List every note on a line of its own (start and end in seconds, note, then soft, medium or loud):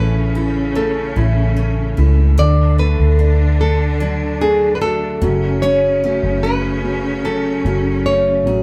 0.00 1.12 A1 loud
0.00 2.38 A2 medium
0.00 2.34 C#3 medium
0.00 0.76 A3 medium
0.00 1.55 C#4 medium
0.00 2.34 C#4 medium
0.00 0.34 E4 medium
0.00 1.15 E4 medium
0.00 0.35 A4 medium
0.00 0.79 B4 medium
0.35 1.15 E4 medium
0.35 1.97 A4 medium
0.75 2.78 A3 medium
0.75 1.56 A3 medium
0.75 1.94 A4 medium
1.16 1.93 A1 loud
1.16 2.46 E4 medium
1.16 1.96 E4 medium
1.57 2.36 A3 medium
1.57 2.46 C#4 medium
1.97 2.35 C#2 medium
1.97 2.37 E4 medium
1.97 2.38 A4 medium
2.38 2.95 D2 loud
2.38 5.30 D3 loud
2.38 5.18 D3 loud
2.38 5.18 D3 medium
2.38 5.18 D4 medium
2.38 5.63 A4 medium
2.38 2.76 D5 loud
2.78 4.81 A3 medium
2.78 3.60 A3 medium
2.78 3.60 B4 loud
2.99 5.23 D2 loud
3.19 4.40 D4 medium
3.19 4.00 D4 medium
3.61 4.40 A3 medium
3.61 4.41 A4 loud
4.00 5.66 F#3 medium
4.00 5.19 D4 medium
4.41 5.20 A3 medium
4.41 5.30 D4 medium
4.41 4.72 G#4 medium
4.75 4.81 B4 medium
4.81 5.66 A3 medium
4.81 5.21 F#4 medium
4.81 5.62 A4 loud
5.21 6.19 F#1 loud
5.21 5.62 F#2 medium
5.21 8.63 C#3 medium
5.21 6.02 F#3 medium
5.21 8.63 C#4 loud
5.62 8.63 F#2 medium
5.62 6.43 C#4 medium
5.62 6.84 G#4 medium
5.62 6.43 C#5 loud
6.04 6.83 F#3 medium
6.04 8.05 A3 medium
6.23 7.61 F#1 loud
6.43 7.23 C#4 medium
6.43 7.65 C#4 medium
6.43 7.25 B4 loud
6.84 7.63 F#3 medium
7.24 8.63 F#3 medium
7.24 8.04 C#4 medium
7.24 8.05 A4 medium
7.65 8.45 F#1 loud
7.65 8.45 F#3 medium
7.65 8.63 C#4 medium
8.06 8.63 A3 medium
8.06 8.63 C#4 medium
8.06 8.63 C#5 loud
8.45 8.63 A1 medium
8.45 8.63 F#3 medium
8.45 8.63 G#4 medium